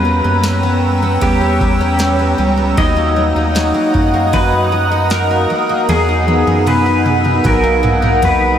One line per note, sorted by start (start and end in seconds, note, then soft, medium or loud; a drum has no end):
0.00 0.21 E2 loud
0.00 0.63 B3 medium
0.00 0.23 C#4 medium
0.00 1.27 B4 loud
0.00 2.74 C#5 medium
0.00 2.74 G5 medium
0.00 2.73 A#5 medium
0.00 2.74 E6 medium
0.05 0.44 G3 medium
0.24 1.18 F#2 loud
0.24 1.21 C#4 medium
0.43 snare loud
0.43 ride medium
0.43 tambourine medium
0.63 1.02 B3 medium
1.02 1.41 B3 medium
1.21 2.34 E2 loud
1.21 1.60 G3 medium
1.21 1.79 C#4 medium
1.21 2.35 G4 medium
1.21 kick medium
1.21 ride medium
1.41 2.19 B3 medium
1.61 1.98 G3 medium
1.61 kick loud
1.80 2.77 C#4 medium
1.99 2.37 G3 medium
1.99 snare loud
1.99 ride medium
1.99 tambourine medium
2.19 2.57 B3 medium
2.38 2.75 C#2 medium
2.38 2.77 G3 medium
2.57 2.96 B3 medium
2.77 3.33 D#2 loud
2.77 3.16 F#3 medium
2.77 3.36 D#4 medium
2.77 5.86 D#5 medium
2.77 3.91 D#5 loud
2.77 5.86 F#5 medium
2.77 5.86 A#5 medium
2.77 5.86 D#6 medium
2.77 kick loud
2.77 ride medium
2.96 3.73 A#3 medium
3.16 3.54 F#3 medium
3.35 3.73 D#2 medium
3.35 4.33 D#4 medium
3.55 3.93 F#3 medium
3.55 snare loud
3.55 ride medium
3.55 tambourine medium
3.74 4.12 A#3 medium
3.94 5.46 F#2 medium
3.94 4.33 F#3 medium
3.94 kick medium
4.14 4.53 A#3 medium
4.33 4.72 F#3 medium
4.33 4.91 D#4 medium
4.33 5.07 B4 loud
4.33 kick medium
4.33 ride medium
4.72 5.10 F#3 medium
4.92 6.08 D#4 medium
5.10 5.50 F#3 medium
5.10 5.85 A#4 loud
5.10 snare loud
5.10 ride medium
5.10 tambourine medium
5.31 5.68 A#3 medium
5.50 5.88 F#3 medium
5.69 5.97 A#3 medium
5.88 6.44 E2 loud
5.88 7.44 F#3 medium
5.88 7.43 D#4 medium
5.88 6.67 G#4 loud
5.88 6.46 G#4 medium
5.88 8.59 F#5 medium
5.88 7.44 G#5 medium
5.88 7.43 E6 medium
5.88 high tom medium
5.88 ride medium
6.09 6.86 D#4 medium
6.28 6.66 B3 medium
6.28 high tom medium
6.47 7.41 F#2 medium
6.47 7.52 G#4 medium
6.47 high tom medium
6.66 7.05 B3 medium
6.66 7.46 B4 loud
6.66 mid tom medium
6.66 ride medium
6.86 7.24 D#4 medium
7.06 7.63 B3 medium
7.06 mid tom medium
7.25 7.44 D#4 medium
7.25 mid tom medium
7.44 8.58 B1 loud
7.44 7.82 F#3 medium
7.44 8.02 D#4 medium
7.44 8.24 A#4 loud
7.44 8.59 D#5 medium
7.44 8.59 A#5 medium
7.44 8.59 D#6 medium
7.44 kick medium
7.44 mid tom medium
7.44 ride medium
7.63 8.59 A#3 medium
7.83 8.22 F#3 medium
7.83 mid tom loud
8.02 8.59 D#4 medium
8.02 mid tom medium
8.22 8.59 F#3 medium
8.22 8.59 B4 medium
8.22 floor tom loud
8.22 ride medium